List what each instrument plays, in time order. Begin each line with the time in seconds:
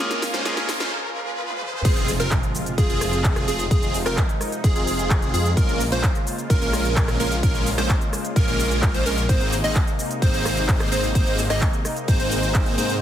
Already playing: analog synth pad C#3 A#3 F4 G#4, clean electric guitar A#3, riser
0.00 supersaw synth G#3 A#3 C#4 F4 A#4, clean electric guitar C#4 F4 G#4
0.11 snare, closed hi-hat, cabasa
0.22 snare, open hi-hat, cabasa
0.34 supersaw synth G#3 A#3 C#4 F4 C5, snare, closed hi-hat, cabasa
0.44 supersaw synth G#3 A#3 C#4 F4 A#4, clean electric guitar A#3 C#4 F4 G#4, snare, closed hi-hat, cabasa
0.57 snare, closed hi-hat, cabasa
0.69 snare, open hi-hat, cabasa
0.80 supersaw synth G#3 A#3 C#4 F4 C5, snare, closed hi-hat, cabasa
0.92 swell
1.50 high tom
1.62 mid tom
1.73 mid tom
1.85 detuned saw bass F1, analog synth pad C3 F3 G#3 F4, supersaw synth C4 F4 G#4, digital synth lead G#4, kick, closed hi-hat, crash, impact, cabasa
1.97 closed hi-hat, cabasa
2.08 open hi-hat, cabasa
2.20 detuned saw bass F1, supersaw synth C4 F4 A#4, digital synth lead A#4, closed hi-hat, cabasa
2.31 kick, clap, closed hi-hat, cabasa
2.43 closed hi-hat, cabasa
2.55 open hi-hat, cabasa
2.66 closed hi-hat, cabasa
2.78 detuned saw bass F1, supersaw synth C4 F4 G#4, digital synth lead G#4, kick, closed hi-hat, cabasa
2.89 detuned saw bass F1, supersaw synth C4 F4 G#4, digital synth lead G#4, closed hi-hat, cabasa
3.01 cross-stick, open hi-hat, cabasa
3.13 closed hi-hat, cabasa
3.24 kick, clap, closed hi-hat, cabasa
3.36 cross-stick, closed hi-hat, cabasa
3.48 detuned saw bass F1, supersaw synth C4 F4 G#4, digital synth lead G#4, open hi-hat, cabasa
3.59 closed hi-hat, cabasa
3.71 detuned saw bass F1, supersaw synth C4 F4 G#4, analog synth pad D#4, digital synth lead G#4, kick, closed hi-hat, cabasa
3.83 closed hi-hat, cabasa
3.94 open hi-hat, cabasa
4.06 detuned saw bass F1, supersaw synth C4 F4 A#4, digital synth lead A#4, cross-stick, clap, closed hi-hat, cabasa
4.17 kick, clap, closed hi-hat, cabasa
4.29 closed hi-hat, cabasa
4.41 cross-stick, open hi-hat, cabasa
4.52 closed hi-hat, cabasa
4.64 detuned saw bass F1, supersaw synth C4 F4 G#4, digital synth lead G#4, kick, closed hi-hat, cabasa
4.76 detuned saw bass F1, supersaw synth C4 F4 G#4, digital synth lead G#4, closed hi-hat, cabasa
4.87 open hi-hat, cabasa
4.99 closed hi-hat, cabasa
5.10 kick, clap, closed hi-hat, cabasa
5.22 closed hi-hat, cabasa
5.34 detuned saw bass F2, supersaw synth C4 F4 G#4, digital synth lead G#4, open hi-hat, cabasa
5.46 closed hi-hat, cabasa
5.57 detuned saw bass A#1, analog synth pad C#3 A#3 F4, supersaw synth G#3 A#3 C#4 F4 A#4, digital synth lead A#4, kick, closed hi-hat, cabasa
5.69 closed hi-hat, cabasa
5.80 open hi-hat, cabasa
5.92 detuned saw bass A#1, supersaw synth G#3 A#3 C#4 F4 C5, digital synth lead C5, closed hi-hat, cabasa
6.03 kick, clap, closed hi-hat, cabasa
6.15 closed hi-hat, cabasa
6.27 open hi-hat, cabasa
6.38 closed hi-hat, cabasa
6.50 detuned saw bass A#1, supersaw synth G#3 A#3 C#4 F4 A#4, digital synth lead A#4, kick, closed hi-hat, cabasa
6.61 detuned saw bass A#1, supersaw synth G#3 A#3 C#4 F4 A#4, digital synth lead A#4, closed hi-hat, cabasa
6.73 cross-stick, open hi-hat, cabasa
6.85 closed hi-hat, cabasa
6.96 kick, clap, closed hi-hat, cabasa
7.08 cross-stick, closed hi-hat, cabasa
7.20 detuned saw bass A#1, supersaw synth G#3 A#3 C#4 F4 A#4, digital synth lead A#4, open hi-hat, cabasa
7.32 closed hi-hat, cabasa
7.43 detuned saw bass A#1, supersaw synth G#3 A#3 C#4 F4 A#4, digital synth lead A#4, kick, closed hi-hat, cabasa
7.55 closed hi-hat, cabasa
7.66 open hi-hat, cabasa
7.78 detuned saw bass A#1, supersaw synth G#3 A#3 C#4 F4 C5, digital synth lead C5, cross-stick, clap, closed hi-hat, cabasa
7.89 kick, clap, closed hi-hat, cabasa
8.01 closed hi-hat, cabasa
8.13 cross-stick, open hi-hat, cabasa
8.25 closed hi-hat, cabasa
8.36 detuned saw bass A#1, supersaw synth G#3 A#3 C#4 F4 A#4, digital synth lead A#4, kick, closed hi-hat, cabasa
8.48 detuned saw bass A#1, supersaw synth G#3 A#3 C#4 F4 A#4, digital synth lead A#4, closed hi-hat, cabasa
8.59 open hi-hat, cabasa
8.71 closed hi-hat, cabasa
8.82 kick, clap, closed hi-hat, cabasa
8.94 detuned saw bass A#1, supersaw synth G#3 A#3 C#4 F4 C5, digital synth lead C5, closed hi-hat, cabasa
9.06 detuned saw bass A#1, supersaw synth G#3 A#3 C#4 F4 A#4, digital synth lead A#4, open hi-hat, cabasa
9.18 closed hi-hat, cabasa
9.29 detuned saw bass G#1, analog synth pad C3 D#4, supersaw synth A#3 C4 D#4 G#4 C5, digital synth lead C5, kick, closed hi-hat, cabasa
9.41 closed hi-hat, cabasa
9.52 open hi-hat, cabasa
9.64 detuned saw bass G#1, supersaw synth A#3 C4 D#4 G#4 D#5, digital synth lead D#5, closed hi-hat, cabasa
9.75 kick, clap, closed hi-hat, cabasa
9.87 closed hi-hat, cabasa
9.99 open hi-hat, cabasa
10.11 closed hi-hat, cabasa
10.22 detuned saw bass G#1, supersaw synth A#3 C4 D#4 G#4 C5, digital synth lead C5, kick, closed hi-hat, cabasa
10.34 detuned saw bass G#1, supersaw synth A#3 C4 D#4 G#4 C5, digital synth lead C5, closed hi-hat, cabasa
10.45 cross-stick, open hi-hat, cabasa
10.57 closed hi-hat, cabasa
10.68 kick, clap, closed hi-hat, cabasa
10.80 cross-stick, closed hi-hat, cabasa
10.92 detuned saw bass G#1, supersaw synth A#3 C4 D#4 G#4 C5, digital synth lead C5, open hi-hat, cabasa
11.04 closed hi-hat, cabasa
11.15 detuned saw bass G#1, supersaw synth A#3 C4 D#4 G#4 C5, digital synth lead C5, kick, closed hi-hat, cabasa
11.27 closed hi-hat, cabasa
11.38 open hi-hat, cabasa
11.50 detuned saw bass G#1, supersaw synth A#3 C4 D#4 G#4 D#5, digital synth lead D#5, cross-stick, clap, closed hi-hat, cabasa
11.61 kick, clap, closed hi-hat, cabasa
11.73 closed hi-hat, cabasa
11.85 cross-stick, open hi-hat, cabasa
11.97 closed hi-hat, cabasa
12.08 detuned saw bass G#1, supersaw synth A#3 C4 D#4 G#4 C5, digital synth lead C5, kick, closed hi-hat, cabasa
12.20 detuned saw bass G#1, supersaw synth A#3 C4 D#4 G#4 C5, digital synth lead C5, closed hi-hat, cabasa
12.31 open hi-hat, cabasa
12.43 closed hi-hat, cabasa
12.54 kick, clap, closed hi-hat, cabasa
12.66 closed hi-hat, cabasa
12.78 detuned saw bass G#2, supersaw synth A#3 C4 D#4 G#4 C5, digital synth lead C5, open hi-hat, cabasa
12.90 closed hi-hat, cabasa